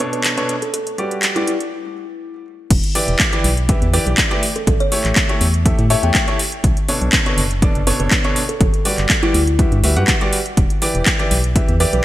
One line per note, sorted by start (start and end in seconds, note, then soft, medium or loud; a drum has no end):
0.00 0.34 B2 medium
0.00 0.34 D4 medium
0.00 0.34 A4 medium
0.00 0.34 B4 medium
0.00 0.34 C#5 loud
0.00 closed hi-hat medium
0.13 0.20 B4 medium
0.13 closed hi-hat soft
0.24 clap loud
0.24 closed hi-hat medium
0.37 0.54 B2 loud
0.37 0.54 D4 medium
0.37 0.54 A4 medium
0.37 0.54 B4 medium
0.37 0.54 C#5 loud
0.37 closed hi-hat soft
0.49 closed hi-hat medium
0.62 0.70 A4 medium
0.62 closed hi-hat soft
0.74 0.82 A4 medium
0.74 closed hi-hat medium
0.87 closed hi-hat soft
0.98 1.33 G3 medium
0.98 1.33 F#4 medium
0.98 1.33 G4 medium
0.98 1.33 B4 medium
0.98 1.33 D5 medium
0.98 closed hi-hat soft
1.11 closed hi-hat soft
1.22 clap loud
1.22 closed hi-hat medium
1.36 1.52 G3 medium
1.36 1.45 E4 medium
1.36 1.52 F#4 medium
1.36 1.52 G4 medium
1.36 1.52 B4 medium
1.36 1.52 D5 medium
1.36 closed hi-hat soft
1.48 2.17 E4 medium
1.48 closed hi-hat medium
1.60 closed hi-hat soft
2.71 2.80 E1 loud
2.71 kick loud
2.71 closed hi-hat medium
2.71 crash loud
2.84 closed hi-hat soft
2.95 3.30 E3 medium
2.95 3.30 E4 medium
2.95 3.30 G4 medium
2.95 3.30 B4 medium
2.95 3.30 D5 medium
2.95 open hi-hat loud
3.08 3.16 E1 medium
3.08 closed hi-hat soft
3.19 kick loud
3.19 clap loud
3.19 closed hi-hat loud
3.33 3.49 E3 medium
3.33 3.49 E4 medium
3.33 3.49 G4 medium
3.33 3.49 B4 medium
3.33 3.49 D5 loud
3.33 closed hi-hat soft
3.44 3.76 B1 medium
3.44 open hi-hat loud
3.57 closed hi-hat soft
3.69 3.86 E3 medium
3.69 3.86 E4 medium
3.69 3.86 G4 medium
3.69 3.86 B4 medium
3.69 3.86 E5 medium
3.69 kick loud
3.69 closed hi-hat loud
3.82 3.99 E2 medium
3.82 closed hi-hat soft
3.93 4.28 E3 loud
3.93 4.28 E4 medium
3.93 4.28 G4 medium
3.93 4.28 B4 medium
3.93 4.02 B4 medium
3.93 4.28 D5 loud
3.93 open hi-hat loud
4.06 4.15 B1 medium
4.06 4.14 B4 medium
4.06 closed hi-hat soft
4.18 kick loud
4.18 clap loud
4.18 closed hi-hat medium
4.31 4.41 A3 loud
4.31 4.41 E4 medium
4.31 4.41 G4 loud
4.31 4.41 B4 medium
4.31 4.41 D5 loud
4.31 closed hi-hat soft
4.43 open hi-hat loud
4.56 4.63 A4 medium
4.56 closed hi-hat soft
4.67 4.76 A1 loud
4.67 4.76 A4 medium
4.67 kick loud
4.67 closed hi-hat medium
4.80 4.97 C#5 medium
4.80 closed hi-hat soft
4.92 5.26 A3 medium
4.92 5.26 E4 medium
4.92 5.26 G4 medium
4.92 5.26 A4 medium
4.92 5.26 C#5 medium
4.92 open hi-hat loud
5.04 5.13 A1 medium
5.04 clap soft
5.04 closed hi-hat soft
5.16 kick loud
5.16 clap loud
5.16 closed hi-hat medium
5.29 5.46 A3 medium
5.29 5.46 E4 medium
5.29 5.46 G4 medium
5.29 5.46 A4 medium
5.29 5.46 C#5 loud
5.29 closed hi-hat soft
5.41 5.73 E2 medium
5.41 open hi-hat loud
5.54 closed hi-hat soft
5.66 5.83 A3 medium
5.66 5.83 E4 medium
5.66 5.83 G4 medium
5.66 5.83 A4 medium
5.66 5.83 E5 medium
5.66 kick loud
5.66 closed hi-hat medium
5.79 5.96 A2 medium
5.79 closed hi-hat soft
5.90 6.25 A3 loud
5.90 6.25 E4 medium
5.90 6.25 G4 medium
5.90 6.25 A4 medium
5.90 6.25 C#5 loud
5.90 6.01 E5 medium
5.90 open hi-hat loud
6.03 6.11 E2 medium
6.03 6.39 G5 medium
6.03 closed hi-hat soft
6.14 kick loud
6.14 clap loud
6.14 closed hi-hat medium
6.28 6.38 E4 loud
6.28 6.38 G4 medium
6.28 6.38 A4 medium
6.28 6.38 C#5 loud
6.28 closed hi-hat soft
6.39 open hi-hat loud
6.52 closed hi-hat soft
6.64 6.73 B1 loud
6.64 kick loud
6.64 closed hi-hat medium
6.77 closed hi-hat soft
6.88 7.23 B2 medium
6.88 7.23 D4 medium
6.88 7.23 A4 medium
6.88 7.23 B4 medium
6.88 7.23 C#5 medium
6.88 open hi-hat loud
7.01 7.10 B1 medium
7.01 closed hi-hat soft
7.12 kick loud
7.12 clap loud
7.12 closed hi-hat loud
7.26 7.42 B2 medium
7.26 7.42 D4 medium
7.26 7.42 A4 medium
7.26 7.42 B4 medium
7.26 7.42 C#5 loud
7.26 closed hi-hat soft
7.38 7.69 F#1 medium
7.38 open hi-hat loud
7.51 closed hi-hat soft
7.62 7.79 B2 medium
7.62 7.79 D4 medium
7.62 7.79 A4 medium
7.62 7.79 B4 medium
7.62 7.79 D5 medium
7.62 kick loud
7.62 closed hi-hat medium
7.75 7.92 F#1 medium
7.75 closed hi-hat soft
7.87 8.21 B2 loud
7.87 8.21 D4 medium
7.87 8.21 A4 medium
7.87 7.95 B4 medium
7.87 8.21 B4 medium
7.87 8.21 C#5 loud
7.87 open hi-hat loud
8.00 8.08 F#1 medium
8.00 8.07 B4 medium
8.00 closed hi-hat soft
8.11 kick loud
8.11 clap loud
8.11 closed hi-hat medium
8.24 8.41 B2 loud
8.24 8.41 D4 loud
8.24 8.41 A4 loud
8.24 8.41 B4 medium
8.24 8.41 C#5 loud
8.24 closed hi-hat soft
8.36 open hi-hat loud
8.49 8.56 A4 medium
8.49 closed hi-hat soft
8.61 8.70 G1 loud
8.61 8.69 A4 medium
8.61 kick loud
8.61 closed hi-hat medium
8.74 closed hi-hat soft
8.85 9.20 G3 medium
8.85 9.20 F#4 medium
8.85 9.20 G4 medium
8.85 9.20 B4 medium
8.85 9.20 D5 medium
8.85 open hi-hat loud
8.98 9.06 G1 medium
8.98 clap soft
8.98 closed hi-hat soft
9.09 kick loud
9.09 clap loud
9.09 closed hi-hat medium
9.23 9.39 G3 medium
9.23 9.32 E4 medium
9.23 9.39 F#4 medium
9.23 9.39 G4 medium
9.23 9.39 B4 medium
9.23 9.39 D5 loud
9.23 closed hi-hat soft
9.34 9.66 D2 medium
9.34 10.04 E4 medium
9.34 open hi-hat loud
9.47 closed hi-hat soft
9.59 9.76 G3 medium
9.59 9.76 F#4 medium
9.59 9.76 G4 medium
9.59 9.76 B4 medium
9.59 9.76 E5 medium
9.59 kick loud
9.59 closed hi-hat medium
9.72 9.83 G2 medium
9.72 closed hi-hat soft
9.83 9.98 D2 loud
9.83 9.93 G3 medium
9.83 9.93 F#4 medium
9.83 9.93 G4 medium
9.83 9.93 B4 medium
9.83 9.93 E5 medium
9.83 open hi-hat loud
9.96 10.05 G2 loud
9.96 10.13 G3 medium
9.96 10.13 F#4 medium
9.96 10.13 G4 medium
9.96 10.13 B4 medium
9.96 10.13 F#5 loud
9.96 closed hi-hat soft
10.07 kick loud
10.07 clap loud
10.07 closed hi-hat medium
10.21 10.37 G3 medium
10.21 10.37 F#4 medium
10.21 10.37 G4 medium
10.21 10.37 B4 medium
10.21 10.37 D5 loud
10.21 closed hi-hat soft
10.33 open hi-hat loud
10.46 closed hi-hat soft
10.57 10.67 E1 loud
10.57 kick loud
10.57 closed hi-hat medium
10.70 closed hi-hat soft
10.82 11.16 E3 medium
10.82 11.16 E4 medium
10.82 11.16 G4 medium
10.82 11.16 B4 medium
10.82 11.16 D5 medium
10.82 open hi-hat loud
10.95 11.03 E1 medium
10.95 closed hi-hat soft
11.06 kick loud
11.06 clap loud
11.06 closed hi-hat medium
11.19 11.36 E3 medium
11.19 11.36 E4 medium
11.19 11.36 G4 medium
11.19 11.36 B4 medium
11.19 11.36 D5 loud
11.19 closed hi-hat soft
11.31 11.63 B1 medium
11.31 open hi-hat loud
11.44 closed hi-hat soft
11.56 11.73 E3 medium
11.56 11.73 E4 medium
11.56 11.73 G4 medium
11.56 11.73 B4 medium
11.56 11.73 E5 medium
11.56 kick loud
11.56 closed hi-hat medium
11.69 11.86 E2 medium
11.69 closed hi-hat soft
11.80 12.05 E3 medium
11.80 12.05 E4 medium
11.80 12.05 G4 medium
11.80 12.05 B4 medium
11.80 11.89 B4 medium
11.80 12.05 D5 loud
11.80 open hi-hat loud
11.93 12.01 B1 medium
11.93 12.01 B4 medium
11.93 closed hi-hat soft